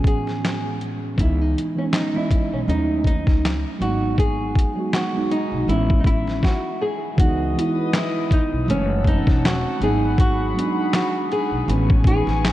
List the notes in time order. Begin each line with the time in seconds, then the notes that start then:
Already playing: A2 E3 G#3 B3 C#4
0.04 G#4, kick, closed hi-hat
0.27 snare
0.45 snare, clap, closed hi-hat
0.81 closed hi-hat
1.16 C#2 E3 G#3 B3 E4, kick, closed hi-hat
1.21 D#4
1.41 D#4
1.58 closed hi-hat
1.75 E3 G#3 B3 C#4
1.80 C#4
1.93 D#4, snare, clap, closed hi-hat
2.13 E3 G#3 B3 E4
2.18 D#5
2.31 kick, closed hi-hat
2.52 B1 C#4
2.66 D#2 F#3 A3 C#4 D#4, closed hi-hat
2.71 D#4
3.04 D#4, kick, closed hi-hat
3.27 C#2, kick, snare
3.45 snare, clap, closed hi-hat
3.79 G#1 F#3 G#3 A#3 F#4, closed hi-hat
3.83 D#4
3.88 B3
4.18 G#4, kick, closed hi-hat
4.55 kick, closed hi-hat
4.75 F#3 G#3 B3
4.80 F#4
4.93 F#4, snare, clap, closed hi-hat
5.13 F#3 G#3 B3
5.18 D#4
5.31 D#4, closed hi-hat
5.52 B1
5.67 A1 E3 G#3 B3 E4, closed hi-hat
5.71 C#4
5.90 kick
6.00 D#4
6.04 A1 E4, kick, closed hi-hat
6.28 snare
6.43 F#4, kick, snare
6.82 G#4
7.16 C#2 E3 G#3 B3 F#4 B4 D#5 D#6, kick, closed hi-hat
7.21 D#4
7.54 E3 G#3 B3
7.59 E4, closed hi-hat
7.93 E4, snare, clap, closed hi-hat
8.31 D#4, kick, closed hi-hat
8.52 B1
8.67 F#1 E3 G#3 A3 C#4 F#5 A5 E6, closed hi-hat
8.71 C#4
9.04 E3 G#3 A3, kick, closed hi-hat
9.08 C4 D#4
9.15 C#4
9.27 E1, kick, snare
9.45 F#4, snare, clap, closed hi-hat
9.79 G#1 F#3 G#3 B3 G#4 B5, closed hi-hat
9.83 D#4 G#4
10.18 F#4, kick, closed hi-hat
10.54 F#3 G#3 B3
10.58 D4, closed hi-hat
10.65 D#4
10.93 F#4, snare, clap, closed hi-hat
11.32 G#4, closed hi-hat
11.52 B1
11.66 A1 E3 G#3 B3 B4 G#5 C#6, closed hi-hat
11.71 C#4
11.90 kick
12.03 E3 G#3 B3 G#4, kick, closed hi-hat
12.08 D#4
12.27 A1, snare
12.45 snare, clap, closed hi-hat